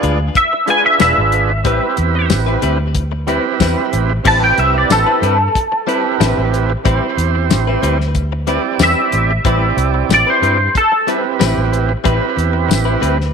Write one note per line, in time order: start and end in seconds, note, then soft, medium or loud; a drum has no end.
0.00 0.28 D2 loud
0.00 0.20 G#3 medium
0.00 0.17 D4 medium
0.00 0.20 D4 medium
0.00 0.18 F4 medium
0.00 0.20 F4 loud
0.00 0.18 G#4 medium
0.00 0.19 B4 medium
0.00 0.18 D5 medium
0.00 0.33 G#5 medium
0.00 closed hi-hat medium
0.21 muted clean electric guitar stroke soft
0.35 0.68 E5 medium
0.35 kick medium
0.35 closed hi-hat medium
0.53 muted clean electric guitar stroke soft
0.66 0.85 G#3 medium
0.66 1.52 D4 medium
0.66 0.85 D4 medium
0.66 1.52 F4 medium
0.66 0.84 F4 medium
0.66 1.52 G#4 medium
0.66 1.53 B4 medium
0.66 0.84 B4 medium
0.66 closed hi-hat soft
0.70 0.85 G#5 medium
0.85 1.00 E5 medium
0.85 muted clean electric guitar stroke soft
1.00 1.14 E1 medium
1.00 1.20 G#3 medium
1.00 1.21 D4 medium
1.00 1.21 F4 medium
1.00 1.21 B4 medium
1.00 2.27 E5 loud
1.00 snare loud
1.00 closed hi-hat medium
1.00 tambourine loud
1.18 1.65 G#1 medium
1.32 muted clean electric guitar stroke soft
1.32 closed hi-hat medium
1.49 muted clean electric guitar stroke soft
1.64 1.78 A1 medium
1.64 1.86 G3 medium
1.64 2.77 C4 medium
1.64 1.86 C4 medium
1.64 2.78 E4 medium
1.64 1.86 E4 medium
1.64 2.78 G4 medium
1.64 2.78 B4 medium
1.64 1.86 B4 medium
1.64 kick loud
1.64 closed hi-hat medium
1.97 2.32 E2 medium
1.97 muted clean electric guitar stroke soft
1.97 closed hi-hat medium
2.15 muted clean electric guitar stroke soft
2.30 2.55 A1 medium
2.30 muted clean electric guitar stroke soft
2.30 snare loud
2.30 closed hi-hat medium
2.30 tambourine loud
2.46 2.61 C4 soft
2.46 2.62 E4 soft
2.46 2.62 B4 soft
2.62 3.37 D2 medium
2.62 2.80 G3 medium
2.62 2.80 C4 medium
2.62 2.79 E4 medium
2.62 2.79 B4 medium
2.62 closed hi-hat medium
2.80 muted clean electric guitar stroke soft
2.95 kick medium
2.95 closed hi-hat medium
3.12 muted clean electric guitar stroke soft
3.27 3.45 G3 medium
3.27 4.12 C4 medium
3.27 3.45 C4 medium
3.27 4.12 E4 medium
3.27 3.44 E4 medium
3.27 4.13 G4 medium
3.27 4.13 B4 medium
3.27 3.43 B4 medium
3.27 closed hi-hat medium
3.45 muted clean electric guitar stroke soft
3.60 3.74 E2 medium
3.60 3.81 G3 medium
3.60 3.81 C4 medium
3.60 3.81 E4 medium
3.60 3.81 B4 medium
3.60 kick medium
3.60 snare medium
3.60 closed hi-hat medium
3.60 tambourine medium
3.93 4.18 A1 medium
3.93 muted clean electric guitar stroke soft
3.93 closed hi-hat medium
4.10 muted clean electric guitar stroke soft
4.23 4.50 A1 medium
4.23 4.45 G3 medium
4.23 5.37 C4 medium
4.23 4.46 C4 medium
4.23 5.38 E4 medium
4.23 4.46 E4 medium
4.23 5.38 G4 medium
4.23 5.38 B4 medium
4.23 4.46 B4 medium
4.23 kick loud
4.23 crash medium
4.27 4.43 A5 medium
4.44 4.58 G5 medium
4.57 4.83 C2 medium
4.57 4.75 E5 medium
4.57 muted clean electric guitar stroke soft
4.57 closed hi-hat medium
4.74 4.92 D5 medium
4.74 muted clean electric guitar stroke soft
4.90 5.03 A1 medium
4.90 6.82 A4 medium
4.90 muted clean electric guitar stroke soft
4.90 snare loud
4.90 closed hi-hat medium
4.90 tambourine loud
5.06 5.22 C4 soft
5.06 5.22 E4 soft
5.06 5.22 B4 medium
5.22 5.47 G2 medium
5.22 5.40 G3 medium
5.22 5.39 C4 medium
5.22 5.38 E4 medium
5.22 5.38 B4 medium
5.22 closed hi-hat medium
5.39 muted clean electric guitar stroke soft
5.55 kick medium
5.55 closed hi-hat medium
5.72 muted clean electric guitar stroke soft
5.87 6.05 G3 medium
5.87 6.72 C4 medium
5.87 6.04 C4 medium
5.87 6.72 E4 medium
5.87 6.03 E4 medium
5.87 6.73 G4 medium
5.87 6.73 B4 medium
5.87 6.03 B4 medium
5.87 closed hi-hat medium
6.04 muted clean electric guitar stroke soft
6.20 6.33 A1 medium
6.20 6.41 G3 medium
6.20 6.41 C4 medium
6.20 6.41 E4 loud
6.20 6.41 B4 medium
6.20 snare loud
6.20 closed hi-hat medium
6.20 tambourine loud
6.38 6.74 A1 medium
6.53 muted clean electric guitar stroke soft
6.53 closed hi-hat medium
6.70 muted clean electric guitar stroke soft
6.84 6.99 A1 medium
6.84 7.05 G3 medium
6.84 7.97 C4 medium
6.84 7.06 C4 medium
6.84 7.98 E4 medium
6.84 7.06 E4 loud
6.84 7.98 G4 medium
6.84 7.06 B4 loud
6.84 7.98 C5 medium
6.84 kick loud
6.84 closed hi-hat medium
7.17 7.52 E2 medium
7.17 muted clean electric guitar stroke soft
7.17 closed hi-hat medium
7.35 muted clean electric guitar stroke soft
7.50 7.75 A1 medium
7.50 muted clean electric guitar stroke soft
7.50 snare loud
7.50 closed hi-hat medium
7.50 tambourine loud
7.67 7.82 C4 soft
7.67 7.82 E4 soft
7.67 7.83 B4 soft
7.83 8.57 D2 medium
7.83 8.00 G3 medium
7.83 7.99 C4 medium
7.83 7.99 E4 medium
7.83 7.99 B4 medium
7.83 closed hi-hat medium
8.00 muted clean electric guitar stroke medium
8.00 snare soft
8.15 kick medium
8.15 closed hi-hat medium
8.32 muted clean electric guitar stroke soft
8.47 8.64 G3 medium
8.47 9.32 C4 medium
8.47 8.64 C4 medium
8.47 9.32 E4 medium
8.47 8.64 E4 medium
8.47 9.32 G4 medium
8.47 8.63 B4 medium
8.47 9.33 D5 medium
8.47 closed hi-hat medium
8.64 muted clean electric guitar stroke soft
8.79 8.93 E2 medium
8.79 9.00 G3 medium
8.79 9.00 C4 medium
8.79 9.01 E4 medium
8.79 9.01 B4 medium
8.79 snare loud
8.79 closed hi-hat medium
8.79 tambourine loud
8.83 10.08 E5 loud
9.12 9.38 A1 medium
9.12 muted clean electric guitar stroke soft
9.12 closed hi-hat medium
9.31 muted clean electric guitar stroke soft
9.45 9.70 A1 medium
9.45 9.65 G3 medium
9.45 10.57 C4 medium
9.45 9.66 C4 medium
9.45 10.57 E4 medium
9.45 9.66 E4 medium
9.45 10.58 G4 medium
9.45 9.66 B4 medium
9.45 10.58 D5 medium
9.45 kick loud
9.45 closed hi-hat medium
9.77 10.02 C2 medium
9.77 muted clean electric guitar stroke soft
9.77 closed hi-hat medium
9.94 muted clean electric guitar stroke soft
10.09 10.23 A1 medium
10.09 muted clean electric guitar stroke soft
10.09 snare medium
10.09 closed hi-hat medium
10.09 tambourine loud
10.14 10.29 D5 medium
10.27 10.42 C4 soft
10.27 10.42 E4 soft
10.27 10.42 B4 soft
10.27 10.75 C5 medium
10.42 10.67 G2 loud
10.42 10.60 G3 medium
10.42 10.59 C4 medium
10.42 10.59 E4 medium
10.42 10.59 B4 medium
10.42 closed hi-hat medium
10.60 muted clean electric guitar stroke soft
10.75 11.08 A4 medium
10.75 kick medium
10.75 closed hi-hat medium
10.92 muted clean electric guitar stroke soft
11.07 11.24 G3 medium
11.07 11.92 C4 medium
11.07 11.24 C4 medium
11.07 11.92 E4 medium
11.07 11.24 E4 medium
11.07 11.93 G4 medium
11.07 11.23 B4 medium
11.07 11.93 B4 medium
11.07 closed hi-hat medium
11.24 muted clean electric guitar stroke soft
11.40 11.53 A1 medium
11.40 11.60 G3 medium
11.40 11.60 C4 medium
11.40 11.60 E4 medium
11.40 11.61 B4 medium
11.40 snare loud
11.40 closed hi-hat medium
11.40 tambourine loud
11.57 11.94 A1 medium
11.73 muted clean electric guitar stroke soft
11.73 closed hi-hat medium
11.89 muted clean electric guitar stroke soft
12.04 12.18 A1 medium
12.04 12.25 G3 medium
12.04 12.25 C4 medium
12.04 13.17 C4 medium
12.04 12.25 E4 medium
12.04 13.18 E4 medium
12.04 13.18 G4 medium
12.04 12.25 B4 loud
12.04 13.18 B4 medium
12.04 kick loud
12.04 closed hi-hat medium
12.36 12.71 E2 medium
12.36 muted clean electric guitar stroke soft
12.36 closed hi-hat medium
12.53 muted clean electric guitar stroke soft
12.69 12.95 A1 medium
12.69 muted clean electric guitar stroke soft
12.69 snare loud
12.69 closed hi-hat medium
12.69 tambourine loud
12.85 13.00 C4 soft
12.85 13.01 E4 medium
12.85 13.01 B4 medium
13.00 13.34 D2 medium
13.00 13.18 G3 medium
13.00 13.18 C4 medium
13.00 13.17 E4 medium
13.00 13.16 B4 medium
13.00 closed hi-hat medium
13.18 muted clean electric guitar stroke soft
13.18 snare soft